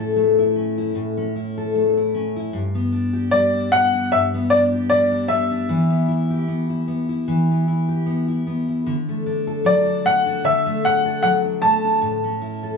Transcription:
0.00 0.94 A2 medium
0.00 0.16 A3 medium
0.00 0.55 C#4 medium
0.00 0.37 E4 medium
0.00 1.56 A4 medium
0.16 1.74 A3 medium
0.39 0.77 E4 medium
0.56 1.16 C#4 medium
0.78 1.35 E4 medium
0.95 2.53 A2 medium
1.17 2.13 C#4 medium
1.36 1.96 E4 medium
1.58 2.62 A4 medium
1.75 2.62 A3 medium
1.97 2.35 E4 medium
2.14 2.62 C#4 medium
2.36 2.62 E4 medium
2.53 4.11 G2 medium
2.75 3.71 B3 medium
2.92 3.52 D4 medium
3.13 4.71 G4 medium
3.31 4.90 G3 medium
3.31 3.73 D5 loud
3.53 3.92 D4 medium
3.72 4.34 B3 medium
3.72 4.13 F#5 loud
3.93 4.49 D4 medium
4.12 5.79 G2 medium
4.12 4.21 E5 loud
4.34 5.29 B3 medium
4.50 5.10 D4 medium
4.50 4.59 D5 medium
4.72 6.30 G4 medium
4.90 5.69 G3 medium
4.90 5.31 D5 medium
5.11 5.50 D4 medium
5.28 5.90 B3 medium
5.28 6.84 E5 medium
5.51 5.78 D4 medium
5.69 7.27 E3 medium
5.90 6.47 B3 medium
6.08 6.68 E4 medium
6.30 7.87 G4 medium
6.48 6.86 B3 medium
6.69 7.08 E4 medium
6.87 7.49 B3 medium
7.09 7.67 E4 medium
7.28 8.95 E3 medium
7.51 8.05 B3 medium
7.68 8.27 E4 medium
7.89 8.95 G4 medium
8.06 8.46 B3 medium
8.28 8.67 E4 medium
8.47 8.95 B3 medium
8.68 8.95 E4 medium
8.86 10.43 D3 medium
9.09 10.04 A3 medium
9.26 9.84 D4 medium
9.47 11.05 A4 medium
9.64 11.22 F#3 medium
9.64 10.06 D5 medium
9.86 10.25 D4 medium
10.04 10.66 A3 medium
10.04 10.42 F#5 medium
10.26 10.82 D4 medium
10.44 12.11 D3 medium
10.44 10.85 E5 medium
10.66 11.62 A3 medium
10.84 11.44 D4 medium
10.84 11.21 F#5 medium
11.05 12.63 A4 medium
11.23 12.11 F#3 medium
11.23 11.32 F#5 medium
11.45 11.83 D4 medium
11.62 12.23 A3 medium
11.62 12.77 A5 medium
11.84 12.11 D4 medium
12.02 12.77 A2 medium
12.24 12.77 C#4 medium
12.42 12.77 E4 medium
12.63 12.77 A4 medium

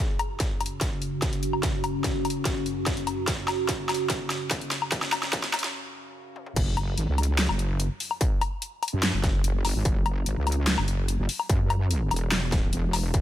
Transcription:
0.00 6.52 F#2 medium
0.00 6.52 C#3 medium
0.00 6.52 C#4 medium
0.00 6.52 F#4 medium
0.19 closed hi-hat medium
0.19 low woodblock medium
0.40 kick medium
0.40 snare soft
0.40 closed hi-hat medium
0.61 closed hi-hat medium
0.61 low woodblock soft
0.66 closed hi-hat medium
0.81 kick medium
0.81 snare medium
0.81 closed hi-hat medium
1.02 closed hi-hat soft
1.22 kick loud
1.22 snare medium
1.22 closed hi-hat medium
1.33 closed hi-hat soft
1.43 closed hi-hat medium
1.53 low woodblock soft
1.63 kick loud
1.63 snare medium
1.63 closed hi-hat medium
1.84 closed hi-hat medium
1.84 low woodblock medium
2.04 kick loud
2.04 snare medium
2.04 closed hi-hat medium
2.25 closed hi-hat soft
2.25 low woodblock soft
2.30 closed hi-hat medium
2.45 kick medium
2.45 snare medium
2.45 closed hi-hat medium
2.66 closed hi-hat soft
2.86 kick loud
2.86 snare medium
2.86 closed hi-hat medium
2.97 closed hi-hat soft
3.07 closed hi-hat medium
3.07 low woodblock soft
3.28 kick loud
3.28 snare medium
3.28 closed hi-hat medium
3.48 snare medium
3.48 closed hi-hat soft
3.48 low woodblock medium
3.69 kick loud
3.69 snare medium
3.69 closed hi-hat medium
3.89 snare medium
3.89 closed hi-hat soft
3.89 low woodblock medium
3.94 closed hi-hat medium
4.10 kick loud
4.10 snare medium
4.10 closed hi-hat medium
4.30 snare medium
4.30 closed hi-hat soft
4.51 kick loud
4.51 snare medium
4.51 closed hi-hat medium
4.61 closed hi-hat soft
4.71 snare medium
4.71 closed hi-hat medium
4.82 low woodblock medium
4.92 kick loud
4.92 snare medium
4.92 closed hi-hat medium
5.02 snare medium
5.12 snare loud
5.12 closed hi-hat soft
5.12 low woodblock medium
5.23 snare medium
5.33 kick loud
5.33 snare medium
5.33 closed hi-hat medium
5.44 snare medium
5.54 snare loud
5.54 closed hi-hat soft
5.54 low woodblock medium
5.59 closed hi-hat medium
5.64 snare medium
6.36 high tom medium
6.46 mid tom medium
6.56 6.96 F#1 loud
6.56 kick loud
6.56 closed hi-hat medium
6.56 crash loud
6.77 closed hi-hat medium
6.77 low woodblock medium
6.97 7.06 G#1 medium
6.97 closed hi-hat medium
7.08 7.47 C#2 loud
7.18 closed hi-hat medium
7.18 low woodblock medium
7.23 closed hi-hat medium
7.39 snare loud
7.39 clap medium
7.39 closed hi-hat medium
7.49 7.89 F#1 loud
7.49 low woodblock medium
7.59 closed hi-hat medium
7.80 closed hi-hat medium
8.00 open hi-hat medium
8.11 low woodblock soft
8.21 kick loud
8.21 closed hi-hat medium
8.41 closed hi-hat medium
8.41 low woodblock medium
8.62 closed hi-hat medium
8.83 closed hi-hat soft
8.83 low woodblock medium
8.88 closed hi-hat medium
8.93 9.12 F#2 loud
9.03 snare loud
9.03 clap medium
9.03 closed hi-hat medium
9.14 9.73 F#1 loud
9.24 kick loud
9.24 snare soft
9.24 closed hi-hat medium
9.44 closed hi-hat medium
9.65 open hi-hat medium
9.65 low woodblock medium
9.75 9.84 G#1 loud
9.85 10.25 F#1 loud
9.85 kick loud
9.85 closed hi-hat medium
10.06 closed hi-hat medium
10.06 low woodblock medium
10.26 10.35 G#1 loud
10.26 closed hi-hat medium
10.37 10.76 C#2 medium
10.47 closed hi-hat medium
10.47 low woodblock medium
10.52 closed hi-hat medium
10.67 snare loud
10.67 clap loud
10.67 closed hi-hat medium
10.78 11.17 F#1 loud
10.78 low woodblock medium
10.88 closed hi-hat soft
11.08 closed hi-hat medium
11.19 11.27 F#1 loud
11.29 open hi-hat medium
11.39 low woodblock medium
11.49 12.10 F#2 loud
11.49 kick loud
11.49 closed hi-hat medium
11.70 closed hi-hat soft
11.70 low woodblock medium
11.91 closed hi-hat medium
12.11 12.71 E1 loud
12.11 closed hi-hat soft
12.11 low woodblock medium
12.16 closed hi-hat medium
12.32 snare loud
12.32 clap medium
12.32 closed hi-hat medium
12.52 kick loud
12.52 snare soft
12.52 closed hi-hat medium
12.73 13.12 E1 loud
12.73 closed hi-hat medium
12.93 open hi-hat medium
12.93 low woodblock medium
13.14 13.21 F#1 loud
13.14 kick loud
13.14 closed hi-hat medium

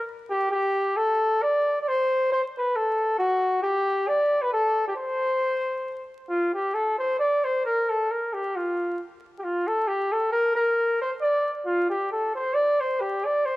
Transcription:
0.30 0.49 G4 medium
0.51 0.98 G4 loud
0.97 1.44 A4 loud
1.42 1.79 D5 loud
1.81 1.90 D5 medium
1.88 2.31 C5 loud
2.32 2.42 C5 loud
2.58 2.77 B4 medium
2.76 3.18 A4 medium
3.19 3.59 F#4 loud
3.63 4.09 G4 loud
4.08 4.43 D5 loud
4.42 4.51 B4 loud
4.53 4.84 A4 loud
4.88 4.92 G4 medium
4.96 6.07 C5 loud
6.29 6.53 F4 medium
6.54 6.76 G4 medium
6.74 6.98 A4 medium
6.99 7.18 C5 medium
7.19 7.46 D5 loud
7.44 7.65 C5 medium
7.65 7.91 A#4 loud
7.90 8.12 A4 medium
8.11 8.35 A#4 medium
8.34 8.58 G4 medium
8.56 9.00 F4 medium
9.39 9.45 G4 medium
9.44 9.69 F4 medium
9.67 9.89 A4 medium
9.87 10.14 G4 medium
10.12 10.31 A4 medium
10.32 10.55 A#4 loud
10.55 10.98 A#4 loud
11.02 11.11 C5 medium
11.21 11.54 D5 loud
11.65 11.89 F4 medium
11.90 12.10 G4 medium
12.12 12.35 A4 medium
12.35 12.56 C5 medium
12.54 12.82 D5 loud
12.80 13.02 C5 medium
13.00 13.26 G4 medium
13.25 13.47 D5 medium
13.46 13.57 C5 medium

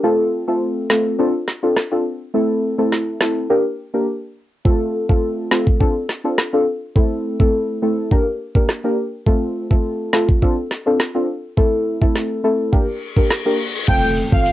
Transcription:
0.03 0.44 A3 medium
0.03 0.44 C4 medium
0.03 0.44 F4 medium
0.03 0.44 A4 loud
0.47 0.87 A3 medium
0.47 0.87 C4 medium
0.47 0.87 F4 medium
0.47 0.87 A4 medium
0.90 1.17 A3 medium
0.90 1.17 C4 medium
0.90 1.17 F4 medium
0.90 1.17 A4 medium
0.90 snare loud
1.18 1.33 C4 medium
1.18 1.33 D4 medium
1.18 1.33 F4 medium
1.18 1.33 A4 loud
1.48 snare medium
1.63 1.75 C4 medium
1.63 1.75 D4 medium
1.63 1.75 F4 medium
1.63 1.76 A4 medium
1.77 cross-stick medium
1.77 snare loud
1.92 2.04 C4 medium
1.92 2.04 D4 medium
1.92 2.04 F4 medium
1.92 2.04 A4 medium
2.34 2.75 A3 medium
2.34 2.75 C4 medium
2.34 2.75 E4 medium
2.34 2.75 A4 loud
2.78 3.17 A3 medium
2.78 3.18 C4 medium
2.78 3.18 E4 medium
2.78 3.18 A4 medium
2.92 snare medium
3.20 3.47 A3 medium
3.20 3.47 C4 medium
3.20 3.48 E4 medium
3.20 3.48 A4 medium
3.20 snare loud
3.49 3.64 A#3 medium
3.49 3.64 D4 medium
3.49 3.64 G4 medium
3.49 3.64 A#4 loud
3.94 4.06 A#3 medium
3.94 4.06 D4 medium
3.94 4.06 G4 medium
3.94 4.06 A#4 medium
4.65 5.05 A3 medium
4.65 5.05 C4 medium
4.65 5.06 F4 medium
4.65 5.06 A4 loud
4.65 kick loud
5.09 5.48 A3 medium
5.09 5.48 C4 medium
5.09 5.48 F4 medium
5.09 5.49 A4 medium
5.09 kick medium
5.51 5.78 A3 medium
5.51 5.78 C4 medium
5.51 5.78 F4 medium
5.51 5.78 A4 medium
5.51 snare loud
5.67 kick loud
5.80 5.94 C4 medium
5.80 5.94 D4 medium
5.80 5.95 F4 medium
5.80 5.95 A4 loud
5.80 kick medium
6.09 snare medium
6.24 6.37 C4 medium
6.24 6.37 D4 medium
6.24 6.37 F4 medium
6.24 6.37 A4 medium
6.38 cross-stick medium
6.38 snare loud
6.53 6.66 C4 medium
6.53 6.66 D4 medium
6.53 6.66 F4 medium
6.53 6.66 A4 medium
6.96 7.36 A3 medium
6.96 7.36 C4 medium
6.96 7.36 E4 medium
6.96 7.36 A4 loud
6.96 kick loud
7.40 7.79 A3 medium
7.40 7.79 C4 medium
7.40 7.79 E4 medium
7.40 7.79 A4 medium
7.40 kick medium
7.82 8.09 A3 medium
7.82 8.09 C4 medium
7.82 8.09 E4 medium
7.82 8.09 A4 medium
8.11 8.25 A#3 medium
8.11 8.25 D4 medium
8.11 8.25 G4 medium
8.11 8.25 A#4 loud
8.11 kick medium
8.55 8.68 A#3 medium
8.55 8.68 D4 medium
8.55 8.68 G4 medium
8.55 8.68 A#4 medium
8.55 kick medium
8.69 cross-stick medium
8.69 snare loud
8.84 8.96 A#3 medium
8.84 8.97 D4 medium
8.84 8.97 G4 medium
8.84 8.97 A#4 medium
9.26 9.67 A3 medium
9.26 9.67 C4 medium
9.26 9.67 F4 medium
9.26 9.67 A4 loud
9.26 kick loud
9.70 10.10 A3 medium
9.70 10.10 C4 medium
9.70 10.10 F4 medium
9.70 10.10 A4 medium
9.70 kick medium
10.13 10.40 A3 medium
10.13 10.40 C4 medium
10.13 10.40 F4 medium
10.13 10.40 A4 medium
10.13 snare loud
10.28 kick loud
10.42 10.56 C4 medium
10.42 10.56 D4 medium
10.42 10.56 F4 medium
10.42 10.56 A4 loud
10.42 kick medium
10.71 snare medium
10.86 10.98 C4 medium
10.86 10.98 D4 medium
10.86 10.99 F4 medium
10.86 10.99 A4 medium
11.00 cross-stick medium
11.00 snare loud
11.15 11.27 C4 medium
11.15 11.27 D4 medium
11.15 11.27 F4 medium
11.15 11.28 A4 medium
11.57 11.98 A3 loud
11.57 11.98 C4 medium
11.57 11.98 E4 medium
11.57 11.98 A4 loud
11.57 kick loud
12.01 12.41 A3 medium
12.01 12.41 C4 medium
12.01 12.41 E4 medium
12.01 12.41 A4 medium
12.01 kick medium
12.16 snare medium
12.44 12.71 A3 medium
12.44 12.71 C4 medium
12.44 12.71 E4 medium
12.44 12.71 A4 medium
12.72 12.86 A#3 medium
12.72 12.87 D4 medium
12.72 12.87 G4 medium
12.72 12.87 A#4 loud
12.72 kick medium
12.72 reverse cymbal medium
13.17 13.29 A#3 medium
13.17 13.29 D4 medium
13.17 13.29 G4 medium
13.17 13.29 A#4 medium
13.17 kick medium
13.31 cross-stick medium
13.31 snare loud
13.46 13.58 A#3 medium
13.46 13.58 D4 medium
13.46 13.58 G4 medium
13.46 13.58 A#4 medium
13.88 14.22 F1 loud
13.88 14.52 A3 medium
13.88 14.28 A3 loud
13.88 14.52 C4 medium
13.88 14.29 C4 medium
13.88 14.52 F4 loud
13.88 14.29 F4 medium
13.88 14.29 A4 loud
13.88 14.02 G5 loud
13.88 kick loud
13.88 closed hi-hat medium
13.88 crash medium
13.88 impact medium
14.17 closed hi-hat medium
14.32 14.52 G1 medium
14.32 14.52 A3 medium
14.32 14.52 C4 medium
14.32 14.52 F4 medium
14.32 14.52 A4 medium
14.32 14.44 F5 medium
14.32 kick medium
14.46 closed hi-hat medium

